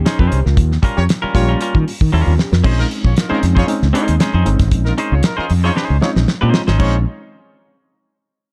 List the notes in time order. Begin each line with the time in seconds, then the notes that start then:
0.06 C#4 D#4 G#4 C5, snare, closed hi-hat
0.19 F2 C#4 D#4 F4 G#4 A#4 C5, kick
0.31 C2 G4 C5, closed hi-hat
0.45 C#2 F4 A#4, snare
0.57 D#2, kick, closed hi-hat
0.72 snare
0.83 G3 C#4 F4 A#4, kick, closed hi-hat
0.96 F2 G4 A#4 C#5
1.09 snare, closed hi-hat
1.22 G3 C#4 F4 A#4, muted fretless electric bass stroke
1.35 A#1 G3 A#3 C#4 F4 G4 A#4 C#5, kick, snare, closed hi-hat
1.49 G3 C#4 F4 A#4
1.60 G3 C#4 F4 A#4, closed hi-hat
1.75 D#3, kick
1.88 open hi-hat
2.01 D#3, kick
2.12 D#2 G3 A#3 C#4 D#4 F4 A#4
2.26 D#2 C4 F4
2.38 C#4 G4, snare
2.52 F2 F4 A#4, snare
2.64 A#1 G#3 C4 C#4 D#4 G#4 C5, kick, crash
2.78 D#4 F4 A#4, snare
2.91 closed hi-hat
3.04 A#1 F4 G#4 C#5, kick
3.17 D#4 F4 A#4, snare, closed hi-hat
3.29 G#3 C4 C#4 D#4 F4 G#4 A#4 C5, muted fretless electric bass stroke
3.43 F2, snare, closed hi-hat
3.55 C#4 D#4 F4 G#4 C5 C#5, kick
3.67 G#3 C4 C#4 D#4, closed hi-hat
3.82 C#2, snare
3.93 G#3 C4 C#4 D4 D#4 F4 G#4 C5 C#5, closed hi-hat
4.01 D#4
4.08 D#2, closed hi-hat
4.20 C#4 D#4 G#4 C5, snare, closed hi-hat
4.34 F2 C#4 D#4 G#4 C5
4.46 G1 G#3 C4 C#4 D#4, closed hi-hat
4.59 G#1, kick, snare, closed hi-hat
4.71 A#1, kick, closed hi-hat
4.85 D#4 F4 A#4, snare
4.98 C#4 D#4 G#4 C5, closed hi-hat
5.12 C#2 F4 G#4 C#5
5.23 D#4 F4 A#4, snare, closed hi-hat
5.37 C#4 D#4 F4 G#4 A#4 C5, muted fretless electric bass stroke
5.50 F2, open hi-hat
5.64 C#4 D#4 F4 G#4 C5 C#5
5.75 C#4 D#4 G#4 C5, snare
5.90 C#2
6.01 G#3 C4 C#4 D#4 F4 G#4 C#5, snare
6.16 A#1, snare
6.28 snare
6.41 A#2 G#3 C4 C#4 D#4 F4 G#4 C5
6.54 snare
6.67 G#1 C#4 D#4 G#4 C5, snare
6.79 A#1 G#3 C4 C#4 D#4 F4 G#4 C5 C#5, kick, crash